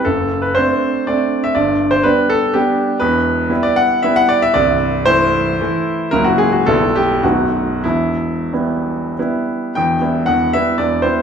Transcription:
0.05 F#1 F#2 A4
0.42 B4
0.55 A3 C4 D4 C5
1.07 A3 C4 D4 D5
1.44 E5
1.55 G1 G2 D5
1.91 C5
2.03 G3 B3 D4 B4
2.30 A4
2.53 G3 B3 D4 G4
3.00 E1 E2 B4
3.50 G3 B3 E4
3.63 D5
3.76 F#5
4.03 G3 B3 E4 E5
4.16 F#5
4.29 D5
4.42 E5
4.54 C1 C2 D5
5.06 E3 A3 E4 C5
5.61 E3 A3 E4
6.11 C#1 C#2 F#3 A#3 E4 A#4
6.24 F#4
6.38 G#4
6.52 F#4
6.66 B0 B1 G3 B3 E4 A4
6.96 G4
7.23 B0 B1 A3 B3 D#4 F#4
7.84 E1 E2 E4
8.53 G3 B3 E4
9.19 G3 B3 E4
9.75 E1 E2 G5
10.01 G3 B3 E4
10.26 E1 E2 F#5
10.53 G3 B3 E4 E5
10.78 E1 E2 D5
11.02 G3 B3 E4 C5

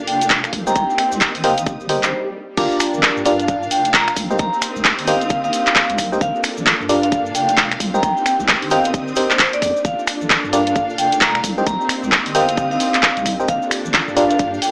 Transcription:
Already playing: A#3 D4 F4 G4 A4 F5
0.07 F1 G5, open hi-hat
0.21 closed hi-hat, cabasa
0.30 kick, clap, cabasa
0.44 finger snap, closed hi-hat, cabasa
0.53 C2 A#3 C4 D#4 G4, kick, open hi-hat
0.67 G4 A#4 C5 D#5 G5 A#5, cabasa
0.76 C2 G5, kick, closed hi-hat, cabasa
0.90 G5, cabasa
0.98 finger snap, open hi-hat
1.12 C2, cabasa
1.17 D#6
1.21 kick, clap, cabasa
1.35 G1, open hi-hat, cabasa
1.44 G4 A#4 C5 D#5 F5 G5, open hi-hat
1.58 closed hi-hat, cabasa
1.66 G1, kick, closed hi-hat, swell, cabasa
1.80 G1, cabasa
1.89 G4 A#4 C5 D#5 G5, open hi-hat
2.03 C5, clap, closed hi-hat, cabasa
2.57 G1 A#3 D4 F4 G4 A#4 D5 F5 A5, kick, closed hi-hat, crash, cabasa
2.71 cabasa
2.80 finger snap, open hi-hat, cabasa
2.94 G1, cabasa
3.03 kick, clap, cabasa
3.17 G2 F5, cabasa
3.26 D4 F4 G4 A#4 D5 F5, open hi-hat, cabasa
3.40 F5, closed hi-hat, cabasa
3.48 kick, closed hi-hat, cabasa
3.63 cabasa
3.71 F1 G5, open hi-hat, cabasa
3.85 closed hi-hat, cabasa
3.94 A#5, kick, clap, cabasa
4.08 finger snap, closed hi-hat, cabasa
4.16 C2 C4 D4 D#4 G4, kick, open hi-hat, cabasa
4.30 G4 A#4 C5 D#5 G5, cabasa
4.39 C2 A#5, kick, closed hi-hat, cabasa
4.53 cabasa
4.62 D#6, finger snap, open hi-hat, cabasa
4.76 C2, cabasa
4.84 kick, clap, cabasa
4.99 G1, open hi-hat, cabasa
5.07 G4 A#4 C5 D#5 F5 G5, open hi-hat, cabasa
5.21 F5, closed hi-hat, cabasa
5.30 kick, closed hi-hat, cabasa
5.44 F5, cabasa
5.53 open hi-hat, cabasa
5.67 clap, closed hi-hat, cabasa
5.76 kick, clap, cabasa
5.90 C2, closed hi-hat, cabasa
5.98 finger snap, kick, open hi-hat, cabasa
6.12 G4 A#4 C5 D#5 G5, cabasa
6.21 G1 D4 F4 A4 F5, kick, closed hi-hat, cabasa
6.35 cabasa
6.44 finger snap, open hi-hat, cabasa
6.57 G1, cabasa
6.67 kick, clap, cabasa
6.80 G2, cabasa
6.89 D4 F4 G4 A#4 D5 F5, open hi-hat, cabasa
7.03 F5, closed hi-hat, cabasa
7.12 kick, closed hi-hat, cabasa
7.26 cabasa
7.35 F1 G5, open hi-hat, cabasa
7.49 closed hi-hat, cabasa
7.57 kick, clap, cabasa
7.71 finger snap, closed hi-hat, cabasa
7.80 C2 C4 D#4 G4, kick, open hi-hat, cabasa
7.94 G4 A#4 C5 D#5 G5 A#5, cabasa
8.03 C2 G5, kick, closed hi-hat, cabasa
8.17 G5, cabasa
8.26 finger snap, open hi-hat, cabasa
8.40 C2, cabasa
8.48 kick, clap, cabasa
8.58 D#6, cabasa
8.62 G1, open hi-hat
8.71 G4 A#4 C5 D#5 F5 G5, open hi-hat, cabasa
8.84 closed hi-hat, cabasa
8.94 kick, closed hi-hat, cabasa
9.08 cabasa
9.16 G4 A#4 C5 D#5 G5, open hi-hat, cabasa
9.31 C5, clap, closed hi-hat, cabasa
9.39 C5, kick, clap, cabasa
9.53 D5, closed hi-hat, cabasa
9.62 F2 D5, finger snap, kick, open hi-hat, cabasa
9.77 cabasa
9.85 G1 A#3 D4 F4 A4 F5, kick, closed hi-hat, cabasa
9.99 cabasa
10.07 finger snap, open hi-hat, cabasa
10.21 G1, cabasa
10.30 kick, clap, cabasa
10.44 G2, cabasa
10.53 D4 F4 G4 A#4 D5 F5, open hi-hat, cabasa
10.57 F5
10.67 F5, closed hi-hat, cabasa
10.76 kick, closed hi-hat, cabasa
10.90 cabasa
10.98 F1 G5, open hi-hat, cabasa
11.12 closed hi-hat, cabasa
11.21 A#5, kick, clap, cabasa
11.35 finger snap, closed hi-hat, cabasa
11.44 C2 C4 D#4 G4, kick, open hi-hat, cabasa
11.57 G4 A#4 C5 D#5 G5, cabasa
11.67 C2 A#5, kick, closed hi-hat, cabasa
11.81 cabasa
11.89 finger snap, open hi-hat, cabasa
12.03 C2, cabasa
12.10 D#6, kick, clap, cabasa
12.26 G1, open hi-hat, cabasa
12.35 G4 A#4 C5 D#5 F5 G5, open hi-hat, cabasa
12.48 F5, closed hi-hat, cabasa
12.57 kick, closed hi-hat, cabasa
12.71 F5, cabasa
12.80 open hi-hat, cabasa
12.94 clap, closed hi-hat, cabasa
13.02 kick, clap, cabasa
13.17 C2, closed hi-hat, cabasa
13.26 finger snap, kick, open hi-hat, cabasa
13.40 G4 A#4 C5 D#5 G5, cabasa
13.48 G1 D4 F4 A4 F5, kick, closed hi-hat, cabasa
13.62 G4, cabasa
13.71 finger snap, open hi-hat, cabasa
13.85 G1, cabasa
13.94 kick, clap, cabasa
14.07 G2 F5, cabasa
14.16 D4 F4 G4 A#4 D5 F5, open hi-hat, cabasa
14.30 F5, closed hi-hat, cabasa
14.39 kick, closed hi-hat, cabasa
14.54 cabasa
14.62 F1 G5, open hi-hat, cabasa

